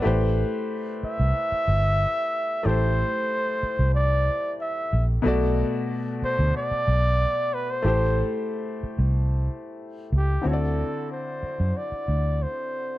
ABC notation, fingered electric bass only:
X:1
M:4/4
L:1/16
Q:1/4=92
K:Ador
V:1 name="Fingered electric bass" clef=bass
A,,,3 z4 C,, z2 G,,,3 z3 | A,,,3 z4 C,,4 z3 _B,,,2 | B,,,3 z4 D,, z2 B,,,3 z3 | A,,,3 z4 C,,4 z3 ^C,,2 |
D,,3 z4 F,, z2 D,,3 z3 |]